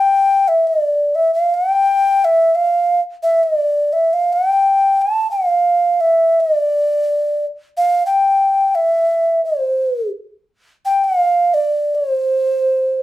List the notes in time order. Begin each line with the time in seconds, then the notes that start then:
Already playing: G5
0.48 E5
0.67 D5
1.15 E5
1.34 F5
1.54 G5
2.25 E5
2.55 F5
3.23 E5
3.43 D5
3.93 E5
4.13 F5
4.33 G5
5.02 A5
5.31 F5
6.01 E5
6.40 D5
7.77 F5
8.06 G5
8.75 E5
9.45 C5
10.85 G5
11.04 F5
11.54 D5
11.95 C5